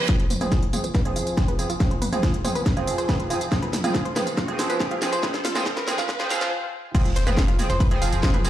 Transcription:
Already playing: synth drone F3
0.09 analog polysynth F3 C4 G#4, synth arpeggio sound F4, kick, snare, closed hi-hat, tambourine, riser
0.20 closed hi-hat
0.30 synth arpeggio sound C5, open hi-hat, mid tom, tambourine
0.41 analog polysynth F3 C4 G#4, synth arpeggio sound B4, closed hi-hat, mid tom, tambourine
0.52 kick, snare, closed hi-hat, tambourine
0.62 synth arpeggio sound F4, closed hi-hat
0.73 analog polysynth F3 C4 G#4, open hi-hat, mid tom, tambourine
0.84 synth arpeggio sound C5, closed hi-hat, tambourine
0.95 synth arpeggio sound B4, kick, snare, closed hi-hat, tambourine
1.05 analog polysynth F3 C4 G#4, closed hi-hat
1.16 synth arpeggio sound F4, open hi-hat, tambourine
1.27 closed hi-hat, tambourine
1.37 analog polysynth F3 C4 G#4, synth arpeggio sound C5, kick, snare, closed hi-hat, tambourine
1.48 synth arpeggio sound B4, closed hi-hat
1.59 analog polysynth F3 C4 G#4, open hi-hat, tambourine
1.70 synth arpeggio sound F4, closed hi-hat, tambourine
1.80 analog polysynth F3 C4 G#4, kick, snare, closed hi-hat, tambourine
1.91 synth arpeggio sound C5, closed hi-hat
2.02 synth arpeggio sound B4, open hi-hat, mid tom, tambourine
2.12 analog polysynth F3 C4 G#4, closed hi-hat, mid tom, tambourine
2.23 synth arpeggio sound F4, kick, snare, closed hi-hat, tambourine
2.34 closed hi-hat
2.45 analog polysynth F3 C4 G#4, synth arpeggio sound C5, open hi-hat, mid tom, tambourine
2.55 synth arpeggio sound B4, closed hi-hat, tambourine
2.66 kick, snare, closed hi-hat
2.77 analog polysynth F3 C4 G#4, synth arpeggio sound F4, closed hi-hat
2.87 open hi-hat, tambourine
2.98 synth arpeggio sound C5, closed hi-hat, tambourine
3.09 analog polysynth F3 C4 G#4, synth arpeggio sound B4, kick, snare, closed hi-hat, tambourine
3.20 closed hi-hat
3.30 analog polysynth F3 C4 G#4, synth arpeggio sound F4, open hi-hat, tambourine
3.41 closed hi-hat, tambourine
3.52 analog polysynth F3 C4 G#4, synth arpeggio sound C5, kick, snare, closed hi-hat, tambourine
3.62 synth arpeggio sound B4, closed hi-hat
3.73 snare, open hi-hat, mid tom, tambourine
3.84 analog polysynth F3 C4 G#4, synth arpeggio sound F4, closed hi-hat, mid tom, tambourine
3.95 kick, snare, closed hi-hat, tambourine
4.05 synth arpeggio sound C5, closed hi-hat
4.16 analog polysynth F3 C4 G#4, synth arpeggio sound B4, snare, open hi-hat, mid tom, tambourine
4.27 closed hi-hat, tambourine
4.37 synth arpeggio sound F4, kick, snare, closed hi-hat, tambourine
4.48 analog polysynth F3 C4 G#4, closed hi-hat
4.59 synth arpeggio sound C5, snare, open hi-hat, tambourine
4.70 synth arpeggio sound B4, closed hi-hat, tambourine
4.80 analog polysynth F3 C4 G#4, kick, snare, closed hi-hat
4.91 synth arpeggio sound F4, closed hi-hat
5.02 analog polysynth F3 C4 G#4, snare, open hi-hat, tambourine
5.13 synth arpeggio sound C5, closed hi-hat, tambourine
5.23 analog polysynth F3 C4 G#4, synth arpeggio sound B4, kick, snare, closed hi-hat, tambourine
5.34 snare, closed hi-hat
5.45 synth arpeggio sound F4, snare, open hi-hat, mid tom, tambourine
5.55 analog polysynth F3 C4 G#4, snare, closed hi-hat, mid tom, tambourine
5.66 synth arpeggio sound C5, kick, snare, closed hi-hat, tambourine
5.77 synth arpeggio sound B4, snare, closed hi-hat
5.87 analog polysynth F3 C4 G#4, snare, open hi-hat, mid tom, tambourine
5.98 synth arpeggio sound F4, snare, closed hi-hat, tambourine
6.09 kick, snare, closed hi-hat, tambourine
6.20 analog polysynth F3 C4 G#4, synth arpeggio sound C5, snare, closed hi-hat
6.30 synth arpeggio sound F5, snare, open hi-hat, tambourine
6.41 synth arpeggio sound F4, snare, closed hi-hat, tambourine
6.95 analog polysynth F3 C4 G#4, synth drone F3, synth arpeggio sound F4, kick, closed hi-hat, ride, tambourine, crash, impact
7.05 closed hi-hat, ride
7.16 sub bass F1, synth arpeggio sound C5, open hi-hat, ride, tambourine
7.27 sub bass F1, analog polysynth F3 C4 G#4, synth arpeggio sound B4, closed hi-hat, mid tom, ride, tambourine
7.37 kick, snare, closed hi-hat, ride, tambourine
7.48 synth arpeggio sound F4, closed hi-hat, ride
7.59 sub bass F1, analog polysynth F3 C4 G#4, open hi-hat, mid tom, ride, tambourine
7.70 sub bass F1, synth arpeggio sound C5, closed hi-hat, ride, tambourine
7.80 synth arpeggio sound B4, kick, closed hi-hat, ride, tambourine
7.91 analog polysynth F3 C4 G#4, closed hi-hat, ride
8.02 sub bass F1, synth arpeggio sound F4, open hi-hat, ride, tambourine
8.13 sub bass F1, closed hi-hat, ride, tambourine
8.23 analog polysynth F3 C4 G#4, synth arpeggio sound C5, kick, snare, closed hi-hat, ride, tambourine
8.34 synth arpeggio sound B4, closed hi-hat, mid tom, ride
8.45 sub bass F1, analog polysynth F3 C4 G#4, open hi-hat, ride, tambourine

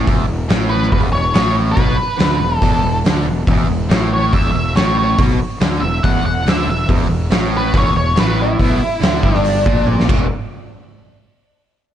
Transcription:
0.05 fingered electric bass E1, overdriven electric guitar E2, kick, open hi-hat
0.27 fingered electric bass E1, overdriven electric guitar E2
0.49 fingered electric bass A1, overdriven electric guitar A2, snare, open hi-hat
0.69 lead electric guitar B4
0.82 snare
0.91 fingered electric bass E1, overdriven electric guitar E2, lead electric guitar B4, kick, open hi-hat
1.11 fingered electric bass E1, overdriven electric guitar E2, lead electric guitar C#5
1.34 fingered electric bass A1, overdriven electric guitar A2, snare, open hi-hat
1.72 overdriven electric guitar B2, lead electric guitar B4
1.77 fingered electric bass B1, kick, open hi-hat
1.97 muted overdriven electric guitar stroke, muted fingered electric bass stroke
2.18 fingered electric bass D2, overdriven electric guitar D3, snare, open hi-hat
2.40 fingered electric bass E1, overdriven electric guitar E2
2.58 overdriven electric guitar E2, lead electric guitar A4
2.62 fingered electric bass E1, kick, open hi-hat
2.83 fingered electric bass E1, overdriven electric guitar E2
3.05 fingered electric bass D2, overdriven electric guitar D3, snare, open hi-hat
3.27 fingered electric bass E1, overdriven electric guitar E2
3.47 fingered electric bass E1, overdriven electric guitar E2, kick, open hi-hat
3.69 fingered electric bass E1, overdriven electric guitar E2
3.89 fingered electric bass A1, overdriven electric guitar A2, snare, open hi-hat
4.14 lead electric guitar C#5
4.32 fingered electric bass E1, overdriven electric guitar E2, lead electric guitar E5, kick, open hi-hat
4.53 fingered electric bass E1, overdriven electric guitar E2, lead electric guitar E5
4.75 fingered electric bass A1, overdriven electric guitar A2, lead electric guitar C#5, snare, open hi-hat
4.99 lead electric guitar C#5
5.18 fingered electric bass B1, overdriven electric guitar B2, kick, open hi-hat
5.40 muted fingered electric bass stroke, muted overdriven electric guitar stroke
5.60 fingered electric bass D2, overdriven electric guitar D3, snare, open hi-hat
5.81 fingered electric bass E1, overdriven electric guitar E2, lead electric guitar E5
6.03 fingered electric bass E1, overdriven electric guitar E2, lead electric guitar F#5, kick, open hi-hat
6.24 fingered electric bass E1, overdriven electric guitar E2, lead electric guitar F#5
6.45 fingered electric bass D2, overdriven electric guitar D3, lead electric guitar E5, snare, open hi-hat
6.67 fingered electric bass E1, overdriven electric guitar E2, lead electric guitar E5
6.88 fingered electric bass E1, overdriven electric guitar E2, kick, open hi-hat
7.09 fingered electric bass E1, overdriven electric guitar E2
7.30 fingered electric bass A1, overdriven electric guitar A2, snare, open hi-hat
7.57 lead electric guitar B4
7.73 fingered electric bass E1, overdriven electric guitar E2, kick, open hi-hat
7.78 lead electric guitar C#5
7.95 fingered electric bass E1, overdriven electric guitar E2, lead electric guitar C#5
8.16 fingered electric bass A1, overdriven electric guitar A2, lead electric guitar B4, snare, open hi-hat
8.42 lead electric guitar E4
8.59 fingered electric bass B1, overdriven electric guitar B2, kick, open hi-hat
8.81 muted overdriven electric guitar stroke, muted fingered electric bass stroke
9.01 fingered electric bass D2, overdriven electric guitar D3, snare, open hi-hat
9.23 fingered electric bass G1, overdriven electric guitar G2, kick
9.35 lead electric guitar D4, snare
9.45 open hi-hat
9.66 fingered electric bass A#1, overdriven electric guitar A#2, kick
9.87 high tom
10.00 snare
10.08 fingered electric bass E1, overdriven electric guitar E2 B2 E3, kick, crash

